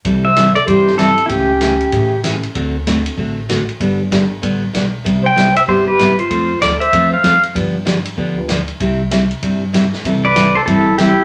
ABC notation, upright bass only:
X:1
M:4/4
L:1/8
Q:"Swing" 1/4=192
K:C
V:1 name="Upright bass" clef=bass
C,,4 G,,4 | ^C,,4 A,,4 | D,,4 A,,,4 | G,,,4 A,,,2 B,,,2 |
C,,4 G,,,4 | F,,2 D,,2 E,,2 F,,2 | G,,4 D,,4 | C,,4 G,,4 |
C,,4 G,,,4 |]